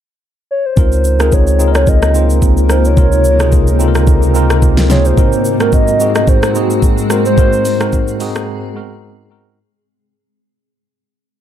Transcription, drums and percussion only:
0.77 kick loud
0.77 shaker medium
0.92 shaker soft
1.05 shaker loud
1.20 cross-stick medium
1.20 shaker medium
1.32 kick medium
1.32 shaker medium
1.47 shaker medium
1.60 shaker medium
1.75 cross-stick loud
1.75 shaker medium
1.87 kick loud
1.87 shaker medium
2.02 cross-stick medium
2.02 shaker medium
2.15 shaker medium
2.30 shaker medium
2.42 kick medium
2.42 shaker medium
2.57 shaker medium
2.70 cross-stick medium
2.70 shaker loud
2.85 shaker medium
2.97 kick loud
2.97 shaker medium
3.12 shaker medium
3.25 shaker medium
3.40 cross-stick medium
3.40 shaker medium
3.52 kick medium
3.52 shaker medium
3.67 shaker medium
3.80 shaker medium
3.95 cross-stick loud
3.95 shaker medium
4.07 kick loud
4.07 shaker medium
4.23 shaker medium
4.35 shaker medium
4.50 cross-stick loud
4.50 shaker medium
4.62 kick medium
4.62 shaker medium
4.77 snare medium
4.77 shaker medium
4.90 snare medium
4.90 shaker loud
5.05 shaker medium
5.18 kick loud
5.18 shaker medium
5.33 shaker soft
5.45 shaker loud
5.60 cross-stick medium
5.60 shaker medium
5.73 kick medium
5.73 shaker medium
5.88 shaker medium
6.00 shaker loud
6.15 cross-stick loud
6.15 shaker medium
6.28 kick loud
6.28 shaker medium
6.43 cross-stick loud
6.43 shaker medium
6.55 shaker medium
6.70 shaker medium
6.83 kick medium
6.83 shaker medium
6.98 shaker medium
7.10 cross-stick medium
7.10 shaker loud
7.25 shaker medium
7.38 kick loud
7.38 shaker medium
7.53 shaker medium
7.65 open hi-hat medium
7.65 shaker medium
7.80 cross-stick loud
7.80 shaker medium
7.93 kick medium
7.93 shaker medium
8.08 shaker medium
8.20 open hi-hat medium
8.20 shaker loud
8.35 cross-stick loud
8.35 shaker medium

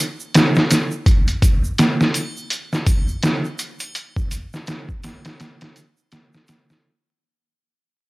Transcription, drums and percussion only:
0.20 shaker soft
0.34 snare loud
0.34 closed hi-hat medium
0.34 shaker medium
0.55 snare medium
0.55 shaker soft
0.71 snare soft
0.71 closed hi-hat medium
0.71 shaker medium
0.91 shaker soft
1.06 kick loud
1.06 closed hi-hat medium
1.06 shaker soft
1.28 closed hi-hat soft
1.28 shaker soft
1.42 kick medium
1.42 closed hi-hat medium
1.42 shaker medium
1.64 shaker soft
1.78 snare loud
1.78 closed hi-hat medium
1.78 shaker soft
2.01 snare medium
2.01 shaker soft
2.14 closed hi-hat medium
2.14 triangle medium
2.14 shaker medium
2.37 shaker soft
2.50 closed hi-hat medium
2.50 shaker soft
2.73 snare soft
2.73 shaker soft
2.86 kick loud
2.86 closed hi-hat medium
2.86 triangle medium
2.86 shaker medium
3.08 shaker soft
3.23 snare loud
3.23 closed hi-hat medium
3.23 shaker medium
3.45 shaker soft
3.59 closed hi-hat medium
3.59 shaker medium
3.79 closed hi-hat soft
3.79 triangle medium
3.79 shaker soft
3.95 closed hi-hat medium
3.95 shaker medium
4.16 kick loud
4.16 shaker soft
4.31 closed hi-hat medium
4.31 shaker loud
4.53 snare soft
4.53 shaker soft
4.67 snare loud
4.67 closed hi-hat medium
4.67 shaker soft
4.89 kick loud
4.89 shaker soft
5.04 snare loud
5.04 closed hi-hat medium
5.04 triangle medium
5.04 shaker medium
5.25 snare loud
5.25 closed hi-hat medium
5.25 shaker soft
5.40 snare loud
5.40 closed hi-hat medium
5.40 shaker soft
5.61 snare loud
5.61 closed hi-hat medium
5.61 shaker soft
5.76 closed hi-hat medium
5.76 shaker medium
5.97 shaker soft
6.12 snare loud
6.12 closed hi-hat medium
6.12 shaker soft
6.33 snare medium
6.33 shaker soft
6.47 snare loud
6.47 closed hi-hat medium
6.47 shaker medium
6.70 snare soft
6.70 shaker soft

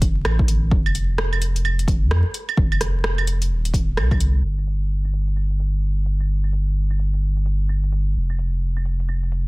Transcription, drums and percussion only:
0.02 kick medium
0.02 closed hi-hat medium
0.25 cross-stick loud
0.25 claves medium
0.39 kick loud
0.48 closed hi-hat medium
0.71 kick loud
0.86 claves soft
0.95 closed hi-hat medium
1.18 cross-stick loud
1.33 claves medium
1.42 closed hi-hat medium
1.56 closed hi-hat soft
1.65 claves medium
1.79 closed hi-hat soft
1.88 kick medium
1.88 closed hi-hat medium
2.11 cross-stick loud
2.34 closed hi-hat medium
2.49 claves medium
2.57 kick loud
2.72 claves medium
2.81 cross-stick medium
2.81 closed hi-hat medium
3.04 cross-stick loud
3.18 claves medium
3.27 closed hi-hat medium
3.42 closed hi-hat soft
3.65 closed hi-hat soft
3.74 kick medium
3.74 closed hi-hat medium
3.97 cross-stick loud
3.97 claves medium
4.11 kick loud
4.11 claves soft
4.21 closed hi-hat medium
4.58 claves soft
4.67 closed hi-hat soft
5.05 claves soft
5.13 closed hi-hat medium
5.28 closed hi-hat soft
5.36 claves medium
5.51 closed hi-hat soft
5.60 closed hi-hat medium
6.06 closed hi-hat soft
6.20 claves soft
6.44 claves soft
6.53 closed hi-hat medium
6.90 claves soft
6.99 closed hi-hat medium
7.14 closed hi-hat soft
7.37 closed hi-hat soft
7.46 closed hi-hat soft
7.69 claves medium
7.84 closed hi-hat soft
7.92 closed hi-hat medium
8.30 claves soft
8.39 closed hi-hat soft
8.77 claves soft
8.85 closed hi-hat soft
9.00 closed hi-hat soft
9.09 claves medium
9.23 closed hi-hat soft
9.32 closed hi-hat soft

